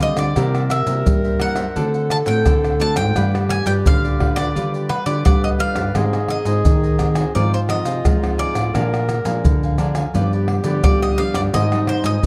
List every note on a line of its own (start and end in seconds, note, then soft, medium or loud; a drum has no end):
0.00 0.12 D3 medium
0.00 0.34 D3 medium
0.00 0.31 G3 medium
0.00 0.31 C4 soft
0.00 0.17 F4 medium
0.00 0.31 F4 medium
0.00 0.10 G4 loud
0.00 0.17 G4 medium
0.00 0.16 C5 medium
0.00 0.15 D5 medium
0.00 0.18 D#5 medium
0.00 pandeiro medium
0.00 maracas medium
0.17 0.33 D3 medium
0.17 0.35 G4 soft
0.17 0.34 C5 soft
0.17 0.34 D5 soft
0.17 0.68 D5 medium
0.17 pandeiro medium
0.17 tamborim medium
0.17 maracas medium
0.36 1.03 C3 medium
0.36 0.81 C3 loud
0.36 0.70 G3 medium
0.36 0.70 A#3 medium
0.36 0.53 E4 medium
0.36 0.70 E4 medium
0.36 0.53 A#4 medium
0.36 1.78 A#4 loud
0.36 0.53 C5 medium
0.36 0.53 E5 medium
0.36 pandeiro medium
0.36 tamborim medium
0.36 maracas medium
0.36 surdo medium
0.55 0.70 A#4 soft
0.55 0.70 C5 soft
0.55 0.70 E5 soft
0.55 pandeiro soft
0.55 tamborim medium
0.55 maracas soft
0.70 1.37 E5 medium
0.70 muted cavaquinho stroke soft
0.70 pandeiro medium
0.70 tamborim medium
0.70 maracas medium
0.87 1.03 C3 medium
0.87 1.35 G3 medium
0.87 1.35 A#3 medium
0.87 1.35 E4 medium
0.87 1.22 A#4 medium
0.87 1.22 C5 medium
0.87 1.21 E5 medium
0.87 pandeiro medium
0.87 maracas medium
1.06 1.73 G2 medium
1.06 1.66 G3 loud
1.06 pandeiro medium
1.06 maracas medium
1.06 surdo medium
1.24 1.39 A#4 soft
1.24 1.40 C5 soft
1.24 1.40 E5 medium
1.24 pandeiro soft
1.24 maracas soft
1.40 1.61 G3 medium
1.40 1.62 A#3 medium
1.40 1.57 E4 medium
1.40 1.62 E4 medium
1.40 1.56 A#4 medium
1.40 1.56 C5 soft
1.40 1.55 E5 medium
1.40 2.07 F#5 loud
1.40 pandeiro medium
1.40 tamborim medium
1.56 1.74 A#4 medium
1.56 1.74 C5 medium
1.56 1.74 E5 medium
1.56 pandeiro medium
1.56 tamborim medium
1.56 maracas medium
1.76 2.21 D3 medium
1.76 2.43 D3 medium
1.76 2.09 A3 soft
1.76 2.09 C4 medium
1.76 1.92 D4 medium
1.76 2.10 F#4 medium
1.76 1.93 A4 medium
1.76 3.16 A4 loud
1.76 1.93 C5 medium
1.76 1.93 F#5 medium
1.76 pandeiro medium
1.76 maracas medium
1.76 surdo medium
1.94 2.09 A4 soft
1.94 2.09 C5 soft
1.94 2.09 F#5 medium
1.94 pandeiro soft
1.94 maracas soft
2.10 2.16 A5 medium
2.10 muted cavaquinho stroke soft
2.10 pandeiro medium
2.10 tamborim medium
2.10 maracas medium
2.26 2.43 A2 medium
2.26 2.75 A3 medium
2.26 2.75 C4 medium
2.26 2.44 A4 medium
2.26 2.44 C5 medium
2.26 2.44 F#5 medium
2.26 2.77 G5 medium
2.26 pandeiro medium
2.26 maracas medium
2.45 3.13 A2 medium
2.45 2.99 D3 medium
2.45 2.79 D4 soft
2.45 2.79 A4 medium
2.45 2.79 C5 soft
2.45 pandeiro medium
2.45 tamborim medium
2.45 maracas medium
2.45 surdo medium
2.64 pandeiro soft
2.64 tamborim medium
2.64 maracas soft
2.80 3.10 A3 medium
2.80 3.10 C4 medium
2.80 2.97 D4 medium
2.80 3.10 F#4 medium
2.80 2.96 A4 medium
2.80 2.96 C5 medium
2.80 2.95 F#5 medium
2.80 2.96 A5 loud
2.80 pandeiro medium
2.80 maracas medium
2.96 3.12 G#2 medium
2.96 3.14 A4 soft
2.96 3.14 C5 soft
2.96 3.14 F#5 soft
2.96 3.50 G5 loud
2.96 pandeiro medium
2.96 tamborim medium
2.96 maracas medium
3.16 3.61 G2 loud
3.16 3.82 G3 medium
3.16 3.63 D4 medium
3.16 3.32 F4 medium
3.16 3.63 F4 medium
3.16 3.32 G4 medium
3.16 4.95 G4 loud
3.16 3.63 B4 medium
3.16 3.33 B4 medium
3.16 3.33 D5 medium
3.16 pandeiro medium
3.16 tamborim medium
3.16 maracas medium
3.16 surdo medium
3.34 3.49 G4 soft
3.34 3.49 B4 medium
3.34 3.49 D5 medium
3.34 pandeiro soft
3.34 tamborim medium
3.34 maracas soft
3.49 3.66 G#5 loud
3.49 muted cavaquinho stroke soft
3.49 pandeiro medium
3.49 tamborim medium
3.66 3.82 G2 medium
3.66 4.14 D4 medium
3.66 4.14 F4 medium
3.66 4.02 G4 medium
3.66 4.01 B4 medium
3.66 4.15 B4 medium
3.66 4.01 D5 medium
3.66 3.72 G5 medium
3.66 pandeiro medium
3.66 maracas medium
3.85 4.52 D3 medium
3.85 4.90 D3 medium
3.85 4.35 F5 loud
3.85 pandeiro medium
3.85 maracas medium
3.85 surdo loud
4.04 4.19 G4 soft
4.04 4.20 B4 soft
4.04 4.20 D5 medium
4.04 pandeiro soft
4.04 maracas soft
4.19 4.49 D4 medium
4.19 4.50 F4 medium
4.19 4.37 F4 medium
4.19 4.36 G4 medium
4.19 4.50 B4 medium
4.19 4.36 B4 medium
4.19 4.34 D5 medium
4.19 pandeiro medium
4.19 tamborim medium
4.19 surdo medium
4.36 4.54 G4 medium
4.36 4.54 B4 medium
4.36 4.53 D5 medium
4.36 4.89 D5 medium
4.36 pandeiro medium
4.36 tamborim medium
4.36 maracas medium
4.55 5.22 G3 medium
4.55 4.88 D4 medium
4.55 4.89 F4 medium
4.55 4.72 F4 medium
4.55 4.72 G4 medium
4.55 4.89 B4 medium
4.55 4.72 B4 medium
4.55 4.73 D5 medium
4.55 pandeiro medium
4.55 maracas medium
4.55 surdo medium
4.74 4.89 G4 soft
4.74 4.89 B4 soft
4.74 4.89 D5 soft
4.74 pandeiro soft
4.74 maracas soft
4.89 5.06 B4 medium
4.89 muted cavaquinho stroke soft
4.89 pandeiro medium
4.89 tamborim medium
5.06 5.22 D3 medium
5.06 5.54 D4 medium
5.06 5.54 F4 medium
5.06 5.24 G4 medium
5.06 5.23 B4 medium
5.06 5.54 B4 medium
5.06 5.23 D5 medium
5.06 pandeiro medium
5.06 maracas medium
5.25 5.92 D3 medium
5.25 5.78 G3 medium
5.25 5.57 F4 soft
5.25 5.58 G4 soft
5.25 5.97 B4 medium
5.25 5.58 B4 medium
5.25 5.42 D5 medium
5.25 5.59 D5 soft
5.25 pandeiro medium
5.25 tamborim medium
5.25 maracas medium
5.25 surdo loud
5.44 5.49 D#5 medium
5.44 pandeiro soft
5.44 tamborim medium
5.44 maracas soft
5.59 5.89 D4 medium
5.59 5.76 F4 medium
5.59 5.89 F4 soft
5.59 5.75 G4 medium
5.59 5.75 B4 medium
5.59 5.90 B4 medium
5.59 5.74 D5 medium
5.59 6.32 F5 medium
5.59 pandeiro medium
5.76 5.92 G2 medium
5.76 5.93 G4 soft
5.76 5.93 B4 soft
5.76 5.93 D5 medium
5.76 pandeiro medium
5.76 tamborim medium
5.76 maracas medium
5.95 6.40 G#2 loud
5.95 6.62 G#2 medium
5.95 6.16 G3 medium
5.95 6.16 C4 medium
5.95 6.16 D#4 medium
5.95 6.11 G4 medium
5.95 7.35 G#4 loud
5.95 6.12 C5 medium
5.95 6.12 D#5 medium
5.95 6.12 G#5 medium
5.95 pandeiro medium
5.95 tamborim medium
5.95 maracas medium
5.95 surdo medium
6.13 6.28 C5 soft
6.13 6.29 D#5 soft
6.13 6.29 G#5 medium
6.13 pandeiro soft
6.13 tamborim medium
6.13 maracas soft
6.28 6.75 C4 medium
6.28 6.75 D#4 medium
6.28 7.31 D#5 medium
6.28 muted cavaquinho stroke soft
6.28 pandeiro medium
6.28 tamborim medium
6.45 6.61 G#2 medium
6.45 6.81 C5 medium
6.45 6.81 D#5 medium
6.45 6.81 G#5 medium
6.45 pandeiro medium
6.45 maracas medium
6.65 7.25 D#3 loud
6.65 7.32 D#3 medium
6.65 pandeiro medium
6.65 maracas medium
6.65 surdo loud
6.83 6.98 C5 soft
6.83 6.98 D#5 soft
6.83 6.99 G#5 soft
6.83 pandeiro soft
6.83 maracas soft
6.98 7.32 C4 medium
6.98 7.32 D#4 medium
6.98 7.16 G4 soft
6.98 7.15 C5 medium
6.98 7.15 D#5 medium
6.98 7.14 G#5 medium
6.98 pandeiro medium
6.98 tamborim medium
6.98 maracas medium
6.98 surdo medium
7.15 7.33 C5 medium
7.15 7.33 D#5 medium
7.15 7.33 G#5 medium
7.15 pandeiro medium
7.15 tamborim medium
7.15 maracas medium
7.35 7.80 G#2 loud
7.35 8.02 G#2 medium
7.35 7.56 F3 medium
7.35 7.56 C4 medium
7.35 7.51 D#4 medium
7.35 7.56 D#4 medium
7.35 8.76 F4 loud
7.35 7.52 G#4 medium
7.35 7.52 C5 medium
7.35 7.51 D5 medium
7.35 7.52 F5 medium
7.35 pandeiro medium
7.35 maracas medium
7.35 surdo medium
7.53 7.68 G#4 soft
7.53 7.59 C5 medium
7.53 7.68 C5 soft
7.53 7.69 F5 soft
7.53 pandeiro soft
7.53 maracas soft
7.69 7.99 F3 medium
7.69 7.99 C4 medium
7.69 7.99 D#4 medium
7.69 8.36 D#5 medium
7.69 muted cavaquinho stroke soft
7.69 pandeiro medium
7.69 tamborim medium
7.69 maracas medium
7.85 8.01 C3 medium
7.85 8.03 G#4 medium
7.85 8.03 C5 medium
7.85 8.03 F5 medium
7.85 pandeiro medium
7.85 maracas medium
8.04 8.71 G#2 medium
8.04 8.15 F3 medium
8.04 8.57 G#3 medium
8.04 8.15 C4 medium
8.04 8.37 D#4 soft
8.04 8.16 D#4 medium
8.04 8.37 G#4 medium
8.04 8.38 C5 medium
8.04 8.38 F5 medium
8.04 pandeiro medium
8.04 tamborim medium
8.04 maracas medium
8.04 surdo medium
8.23 8.69 F3 medium
8.23 8.70 C4 medium
8.23 8.70 D#4 medium
8.23 pandeiro soft
8.23 tamborim medium
8.23 maracas soft
8.38 8.55 D#4 medium
8.38 8.55 G#4 medium
8.38 8.55 C5 medium
8.38 9.06 D5 medium
8.38 8.54 F5 medium
8.38 pandeiro medium
8.55 8.71 A2 medium
8.55 8.73 G#4 soft
8.55 8.73 C5 soft
8.55 8.72 F5 medium
8.55 pandeiro medium
8.55 tamborim medium
8.55 maracas medium
8.74 9.41 A#2 medium
8.74 9.20 A#2 loud
8.74 9.07 F3 medium
8.74 9.08 G#3 medium
8.74 8.91 D4 medium
8.74 9.08 D4 medium
8.74 9.87 A#4 loud
8.74 8.91 A#4 medium
8.74 8.91 F5 medium
8.74 8.91 G#5 medium
8.74 pandeiro medium
8.74 tamborim medium
8.74 maracas medium
8.74 surdo medium
8.93 9.08 A#4 soft
8.93 9.08 F5 soft
8.93 9.09 G#5 soft
8.93 pandeiro soft
8.93 tamborim medium
8.93 maracas soft
9.09 muted cavaquinho stroke soft
9.09 pandeiro medium
9.09 tamborim medium
9.09 maracas medium
9.25 9.41 A#2 medium
9.25 9.73 F3 medium
9.25 9.73 G#3 medium
9.25 9.73 D4 medium
9.25 9.61 A#4 medium
9.25 9.60 F5 medium
9.25 9.60 G#5 medium
9.25 pandeiro medium
9.25 maracas medium
9.44 10.11 F2 medium
9.44 10.04 D3 loud
9.44 pandeiro medium
9.44 maracas medium
9.44 surdo loud
9.63 9.78 A#4 soft
9.63 9.78 F5 soft
9.63 9.79 G#5 soft
9.63 pandeiro soft
9.63 maracas soft
9.78 9.99 F3 medium
9.78 9.99 G#3 medium
9.78 10.00 D4 medium
9.78 9.95 D4 medium
9.78 9.95 A#4 medium
9.78 9.95 F5 medium
9.78 9.94 G#5 medium
9.78 pandeiro medium
9.78 tamborim medium
9.78 maracas medium
9.95 10.13 A#4 medium
9.95 10.13 F5 medium
9.95 10.12 G#5 medium
9.95 pandeiro medium
9.95 tamborim medium
9.95 maracas medium
10.14 10.59 G2 medium
10.14 10.81 G2 medium
10.14 10.61 F3 medium
10.14 10.61 B3 medium
10.14 10.62 D4 medium
10.14 10.31 F4 medium
10.14 11.56 G4 loud
10.14 10.31 G4 medium
10.14 10.31 B4 medium
10.14 10.31 D5 medium
10.14 pandeiro medium
10.14 maracas medium
10.14 surdo medium
10.33 10.48 G4 soft
10.33 10.48 B4 soft
10.33 10.49 D5 soft
10.33 pandeiro soft
10.33 maracas soft
10.48 muted cavaquinho stroke soft
10.48 pandeiro medium
10.48 tamborim medium
10.64 10.80 D3 medium
10.64 11.13 F3 medium
10.64 11.13 B3 medium
10.64 11.13 D4 medium
10.64 10.83 G4 medium
10.64 10.83 B4 medium
10.64 10.82 D5 medium
10.64 pandeiro medium
10.64 maracas medium
10.84 11.51 D3 medium
10.84 11.36 G3 medium
10.84 11.16 F4 medium
10.84 11.17 G4 medium
10.84 11.17 B4 medium
10.84 11.02 D5 medium
10.84 pandeiro medium
10.84 tamborim medium
10.84 maracas medium
10.84 surdo loud
11.02 11.20 D#5 medium
11.02 pandeiro soft
11.02 tamborim medium
11.02 maracas soft
11.18 11.48 F3 medium
11.18 11.48 B3 medium
11.18 11.49 D4 medium
11.18 11.35 F4 medium
11.18 11.34 G4 medium
11.18 11.34 B4 medium
11.18 11.33 D5 medium
11.18 11.35 F5 loud
11.18 pandeiro medium
11.34 11.50 G2 medium
11.34 11.52 G4 soft
11.34 11.52 B4 soft
11.34 11.52 D5 soft
11.34 11.40 D5 medium
11.34 pandeiro medium
11.34 tamborim medium
11.34 maracas medium
11.53 11.98 G#2 loud
11.53 12.21 G#2 medium
11.53 11.65 G3 medium
11.53 11.65 C4 medium
11.53 12.25 D#4 loud
11.53 11.65 D#4 medium
11.53 11.70 G4 medium
11.53 11.70 C5 medium
11.53 11.87 D#5 loud
11.53 11.71 D#5 medium
11.53 11.71 G#5 medium
11.53 pandeiro medium
11.53 tamborim medium
11.53 maracas medium
11.53 surdo medium
11.72 12.19 G3 medium
11.72 12.19 C4 medium
11.72 12.19 D#4 medium
11.72 11.87 C5 soft
11.72 11.87 D#5 soft
11.72 11.87 G#5 soft
11.72 pandeiro soft
11.72 tamborim medium
11.72 maracas soft
11.87 12.05 C5 medium
11.87 muted cavaquinho stroke soft
11.87 pandeiro medium
11.87 tamborim medium
12.04 12.20 G#2 loud
12.04 12.26 C5 medium
12.04 12.26 D#5 medium
12.04 12.22 D#5 medium
12.04 12.26 G#5 medium
12.04 pandeiro medium
12.04 maracas medium